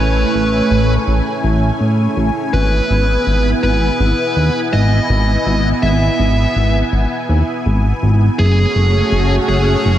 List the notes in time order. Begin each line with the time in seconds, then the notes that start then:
Already playing: A1 A3 C#4 E4 B4 C#5 G#5
0.34 A1
0.71 A1
1.07 A1
1.44 A1
1.80 A2
2.17 A1
2.53 G#1 B3 E4 B4
2.90 G#1
3.27 G#1
3.63 G#1 B4
4.00 G#1
4.36 D#2
4.73 G#1 D#5
5.10 G#1
5.46 G#1
5.83 G#1 E5
6.19 G#1
6.56 G#1
6.93 G#1
7.29 D#2
7.66 G#1
8.02 G#1
8.39 F#1 A3 C#4 F#4 G#4 C#5
8.76 F#1
9.12 F#1
9.49 F#1 G#4
9.85 F#1